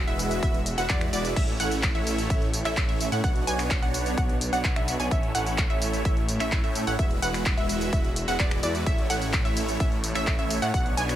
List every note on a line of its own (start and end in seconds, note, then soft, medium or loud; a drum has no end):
0.00 1.35 G#3 medium
0.00 1.35 F#4 medium
0.00 1.35 E5 loud
0.07 0.40 E1 loud
0.07 0.40 G#3 medium
0.07 0.40 E4 medium
0.07 0.40 F#4 medium
0.07 0.40 B4 medium
0.07 0.40 E5 medium
0.07 closed hi-hat soft
0.19 open hi-hat loud
0.19 tambourine medium
0.31 closed hi-hat medium
0.31 tambourine soft
0.43 0.75 E1 loud
0.43 0.59 G#3 medium
0.43 0.59 E4 medium
0.43 0.59 B4 medium
0.43 0.59 E5 medium
0.43 kick loud
0.43 closed hi-hat medium
0.43 tambourine soft
0.54 closed hi-hat soft
0.66 open hi-hat loud
0.66 tambourine medium
0.78 0.87 E1 loud
0.78 0.87 G#3 medium
0.78 0.87 E4 medium
0.78 0.87 F#4 medium
0.78 0.87 B4 medium
0.78 0.87 F#5 medium
0.78 closed hi-hat medium
0.78 tambourine soft
0.89 1.11 E2 loud
0.89 1.10 G#3 medium
0.89 1.10 E4 medium
0.89 1.10 F#4 medium
0.89 1.10 B4 medium
0.89 1.09 D5 loud
0.89 1.10 D5 loud
0.89 kick loud
0.89 clap loud
0.89 closed hi-hat medium
0.89 tambourine soft
1.01 finger snap medium
1.01 closed hi-hat soft
1.13 1.34 E1 loud
1.13 1.34 G#3 medium
1.13 1.34 E4 medium
1.13 1.34 F#4 medium
1.13 1.34 B4 medium
1.13 1.34 D5 medium
1.13 open hi-hat loud
1.13 tambourine medium
1.25 closed hi-hat medium
1.25 tambourine soft
1.36 1.57 A1 loud
1.36 1.57 A3 loud
1.36 3.22 A3 medium
1.36 1.57 C#4 medium
1.36 1.57 E4 medium
1.36 3.22 E4 medium
1.36 1.57 C#5 medium
1.36 3.22 C#5 loud
1.36 1.57 E5 loud
1.36 kick loud
1.36 closed hi-hat medium
1.36 crash medium
1.36 tambourine soft
1.48 closed hi-hat soft
1.60 1.93 A1 loud
1.60 1.92 A3 medium
1.60 1.92 C#4 medium
1.60 1.92 E4 medium
1.60 1.92 C#5 medium
1.60 1.92 F#5 loud
1.60 open hi-hat loud
1.60 tambourine medium
1.71 closed hi-hat medium
1.71 tambourine soft
1.83 kick loud
1.83 clap loud
1.83 closed hi-hat medium
1.83 tambourine soft
1.95 2.28 A1 loud
1.95 2.27 A3 medium
1.95 2.27 C#4 medium
1.95 2.27 E4 medium
1.95 2.27 C#5 medium
1.95 2.27 E5 medium
1.95 closed hi-hat soft
2.07 open hi-hat loud
2.07 tambourine medium
2.18 closed hi-hat medium
2.18 tambourine soft
2.30 2.63 A1 loud
2.30 2.47 A3 medium
2.30 2.47 C#4 medium
2.30 2.47 E4 medium
2.30 2.47 C#5 medium
2.30 2.47 E5 medium
2.30 kick loud
2.30 closed hi-hat medium
2.30 tambourine soft
2.42 closed hi-hat soft
2.54 open hi-hat loud
2.54 tambourine medium
2.65 2.86 A1 loud
2.65 2.86 A3 loud
2.65 2.86 C#4 medium
2.65 2.86 E4 medium
2.65 2.86 C#5 medium
2.65 2.86 E5 loud
2.65 finger snap medium
2.65 clap soft
2.65 closed hi-hat medium
2.65 tambourine soft
2.77 kick loud
2.77 clap loud
2.77 closed hi-hat medium
2.77 tambourine soft
2.89 3.10 A1 loud
2.89 3.09 A3 medium
2.89 3.09 C#4 medium
2.89 3.09 E4 medium
2.89 3.09 C#5 medium
2.89 3.09 E5 medium
2.89 closed hi-hat soft
3.01 open hi-hat loud
3.01 tambourine medium
3.12 3.21 A2 loud
3.12 3.21 A3 medium
3.12 3.21 C#4 medium
3.12 3.21 E4 medium
3.12 3.21 C#5 medium
3.12 3.21 F#5 medium
3.12 closed hi-hat medium
3.12 tambourine soft
3.24 3.45 B1 loud
3.24 5.09 B3 medium
3.24 3.44 B3 medium
3.24 3.44 D4 medium
3.24 5.09 D4 medium
3.24 3.44 F#4 medium
3.24 5.09 C#5 medium
3.24 3.44 C#5 medium
3.24 3.44 F#5 loud
3.24 3.45 F#5 loud
3.24 kick loud
3.24 closed hi-hat medium
3.24 tambourine soft
3.36 closed hi-hat soft
3.47 3.80 B1 loud
3.47 3.80 B3 medium
3.47 3.80 D4 medium
3.47 3.80 F#4 medium
3.47 3.80 C#5 medium
3.47 3.80 G#5 loud
3.47 open hi-hat loud
3.47 tambourine medium
3.59 finger snap medium
3.59 clap soft
3.59 closed hi-hat medium
3.59 tambourine soft
3.71 kick loud
3.71 clap loud
3.71 closed hi-hat medium
3.71 tambourine soft
3.82 4.15 B1 loud
3.82 4.15 B3 medium
3.82 4.15 D4 medium
3.82 4.15 F#4 medium
3.82 4.15 C#5 medium
3.82 4.15 F#5 medium
3.82 closed hi-hat soft
3.94 open hi-hat loud
3.94 tambourine medium
4.06 closed hi-hat medium
4.06 tambourine soft
4.17 4.50 B1 loud
4.17 4.34 B3 medium
4.17 4.34 D4 medium
4.17 4.34 F#4 medium
4.17 4.34 C#5 medium
4.17 4.34 F#5 medium
4.17 kick loud
4.17 closed hi-hat medium
4.17 tambourine soft
4.29 closed hi-hat soft
4.41 open hi-hat loud
4.41 tambourine medium
4.53 4.74 B1 loud
4.53 4.73 B3 loud
4.53 4.73 D4 medium
4.53 4.73 F#4 medium
4.53 4.73 C#5 medium
4.53 4.73 F#5 loud
4.53 closed hi-hat medium
4.53 tambourine soft
4.64 kick loud
4.64 clap loud
4.64 closed hi-hat medium
4.64 tambourine soft
4.76 4.97 B1 medium
4.76 4.97 B3 medium
4.76 4.97 D4 medium
4.76 4.97 F#4 medium
4.76 4.97 C#5 medium
4.76 4.97 E5 medium
4.76 finger snap medium
4.76 closed hi-hat soft
4.88 open hi-hat loud
4.88 tambourine medium
4.99 5.09 B1 loud
4.99 5.08 B3 medium
4.99 5.08 D4 medium
4.99 5.08 F#4 medium
4.99 5.08 C#5 medium
4.99 5.08 G#5 medium
4.99 5.09 G#5 medium
4.99 closed hi-hat medium
4.99 tambourine soft
5.11 5.32 A1 loud
5.11 5.32 A3 loud
5.11 6.97 A3 medium
5.11 5.32 C#4 medium
5.11 5.32 E4 medium
5.11 6.97 E4 medium
5.11 6.97 C#5 medium
5.11 5.32 E5 loud
5.11 kick loud
5.11 closed hi-hat medium
5.11 tambourine soft
5.23 closed hi-hat soft
5.35 5.68 A1 loud
5.35 5.67 A3 medium
5.35 5.67 C#4 medium
5.35 5.67 E4 medium
5.35 5.67 C#5 medium
5.35 5.67 F#5 loud
5.35 open hi-hat loud
5.35 tambourine medium
5.46 closed hi-hat medium
5.46 tambourine soft
5.58 kick loud
5.58 clap loud
5.58 closed hi-hat medium
5.58 tambourine soft
5.70 6.03 A1 loud
5.70 6.02 A3 medium
5.70 6.02 C#4 medium
5.70 6.02 E4 medium
5.70 6.02 C#5 medium
5.70 6.02 E5 medium
5.70 closed hi-hat soft
5.82 open hi-hat loud
5.82 tambourine medium
5.93 closed hi-hat medium
5.93 tambourine soft
6.05 6.38 A1 loud
6.05 6.22 A3 medium
6.05 6.22 C#4 medium
6.05 6.22 E4 medium
6.05 6.22 C#5 medium
6.05 6.22 E5 medium
6.05 kick loud
6.05 closed hi-hat medium
6.05 tambourine soft
6.17 closed hi-hat soft
6.29 open hi-hat loud
6.29 tambourine medium
6.40 6.61 A1 loud
6.40 6.61 A3 loud
6.40 6.61 C#4 medium
6.40 6.61 E4 medium
6.40 6.61 C#5 medium
6.40 6.61 E5 loud
6.40 finger snap medium
6.40 clap soft
6.40 closed hi-hat medium
6.40 tambourine soft
6.52 kick loud
6.52 clap loud
6.52 closed hi-hat medium
6.52 tambourine soft
6.64 6.85 A2 loud
6.64 6.84 A3 medium
6.64 6.84 C#4 medium
6.64 6.84 E4 medium
6.64 6.84 C#5 medium
6.64 6.84 E5 medium
6.64 closed hi-hat soft
6.75 open hi-hat loud
6.75 tambourine medium
6.87 6.97 A1 loud
6.87 6.96 A3 medium
6.87 6.96 C#4 medium
6.87 6.96 E4 medium
6.87 6.96 C#5 medium
6.87 6.96 F#5 medium
6.87 closed hi-hat medium
6.87 tambourine soft
6.99 7.20 E1 loud
6.99 7.20 G#3 loud
6.99 8.85 G#3 medium
6.99 8.84 F#4 medium
6.99 7.20 F#4 medium
6.99 7.19 B4 medium
6.99 8.84 E5 loud
6.99 7.20 E5 loud
6.99 kick loud
6.99 closed hi-hat medium
6.99 tambourine soft
7.11 closed hi-hat soft
7.22 7.55 E1 loud
7.22 7.55 G#3 medium
7.22 7.55 E4 medium
7.22 7.55 F#4 medium
7.22 7.55 B4 medium
7.22 7.55 F#5 loud
7.22 open hi-hat loud
7.22 tambourine medium
7.34 finger snap medium
7.34 clap soft
7.34 closed hi-hat medium
7.34 tambourine soft
7.46 kick loud
7.46 clap loud
7.46 closed hi-hat medium
7.46 tambourine soft
7.57 7.90 E1 loud
7.57 7.90 G#3 medium
7.57 7.90 E4 medium
7.57 7.90 F#4 medium
7.57 7.90 B4 medium
7.57 7.90 E5 medium
7.57 closed hi-hat soft
7.69 open hi-hat loud
7.69 tambourine medium
7.81 closed hi-hat medium
7.81 tambourine soft
7.93 8.25 E1 loud
7.93 8.09 G#3 medium
7.93 8.09 E4 medium
7.93 8.09 F#4 medium
7.93 8.09 B4 medium
7.93 8.09 E5 medium
7.93 kick loud
7.93 closed hi-hat soft
7.93 tambourine soft
8.05 closed hi-hat soft
8.16 open hi-hat loud
8.16 tambourine medium
8.28 8.37 E1 loud
8.28 8.37 G#3 medium
8.28 8.37 E4 medium
8.28 8.37 F#4 medium
8.28 8.37 B4 medium
8.28 8.37 F#5 medium
8.28 closed hi-hat medium
8.28 tambourine soft
8.39 8.61 E1 loud
8.39 8.59 G#3 loud
8.39 8.60 E4 medium
8.39 8.60 D5 loud
8.39 kick loud
8.39 clap loud
8.39 closed hi-hat medium
8.39 tambourine soft
8.51 finger snap medium
8.51 closed hi-hat soft
8.63 8.84 E2 loud
8.63 8.84 G#3 medium
8.63 8.84 E4 medium
8.63 8.84 F#4 medium
8.63 8.84 B4 medium
8.63 8.84 D5 medium
8.63 open hi-hat loud
8.63 tambourine medium
8.75 closed hi-hat medium
8.75 tambourine soft
8.86 9.08 A1 loud
8.86 10.72 A3 medium
8.86 9.07 A3 loud
8.86 9.07 C#4 medium
8.86 10.72 E4 medium
8.86 9.07 E4 medium
8.86 11.16 C#5 medium
8.86 9.07 C#5 medium
8.86 9.07 E5 loud
8.86 kick loud
8.86 closed hi-hat soft
8.86 tambourine soft
8.98 closed hi-hat soft
9.10 9.43 A1 loud
9.10 9.42 A3 medium
9.10 9.42 C#4 medium
9.10 9.42 E4 medium
9.10 9.42 C#5 medium
9.10 9.42 F#5 loud
9.10 open hi-hat loud
9.10 ride medium
9.10 tambourine medium
9.22 closed hi-hat medium
9.22 tambourine soft
9.33 kick loud
9.33 clap loud
9.33 closed hi-hat medium
9.33 tambourine soft
9.45 9.78 A1 loud
9.45 9.77 A3 medium
9.45 9.77 C#4 medium
9.45 9.77 E4 medium
9.45 9.77 C#5 medium
9.45 9.77 E5 medium
9.45 closed hi-hat soft
9.57 open hi-hat loud
9.57 ride medium
9.57 tambourine medium
9.69 closed hi-hat medium
9.69 tambourine soft
9.80 10.13 A1 loud
9.80 9.97 A3 medium
9.80 9.97 C#4 medium
9.80 9.97 E4 medium
9.80 9.97 E5 medium
9.80 kick loud
9.80 closed hi-hat medium
9.80 tambourine soft
9.92 closed hi-hat soft
10.04 open hi-hat loud
10.04 ride medium
10.04 tambourine medium
10.15 10.36 A1 loud
10.15 10.36 A3 loud
10.15 10.36 C#4 medium
10.15 10.36 E4 medium
10.15 10.36 C#5 medium
10.15 10.36 E5 loud
10.15 finger snap medium
10.15 clap soft
10.15 closed hi-hat medium
10.15 tambourine soft
10.27 kick loud
10.27 clap loud
10.27 closed hi-hat soft
10.27 tambourine soft
10.39 10.60 A1 medium
10.39 10.59 A3 medium
10.39 10.59 C#4 medium
10.39 10.59 E4 medium
10.39 10.59 C#5 medium
10.39 10.59 E5 medium
10.39 closed hi-hat soft
10.50 open hi-hat loud
10.50 ride medium
10.50 tambourine medium
10.62 10.72 A2 loud
10.62 10.71 A3 medium
10.62 10.71 C#4 medium
10.62 10.71 E4 medium
10.62 10.71 C#5 medium
10.62 10.71 F#5 medium
10.62 closed hi-hat medium
10.62 tambourine soft
10.74 10.95 B1 loud
10.74 10.94 B3 loud
10.74 11.16 B3 medium
10.74 10.94 D4 medium
10.74 11.16 D4 medium
10.74 10.94 F#4 medium
10.74 10.94 C#5 medium
10.74 10.94 F#5 loud
10.74 10.95 F#5 loud
10.74 kick loud
10.74 closed hi-hat medium
10.74 tambourine soft
10.86 closed hi-hat soft
10.97 11.16 B1 loud
10.97 11.16 B3 medium
10.97 11.16 D4 medium
10.97 11.16 F#4 medium
10.97 11.16 C#5 medium
10.97 11.16 G#5 loud
10.97 open hi-hat loud
10.97 ride medium
10.97 tambourine medium
11.09 finger snap medium
11.09 clap soft
11.09 closed hi-hat medium
11.09 tambourine soft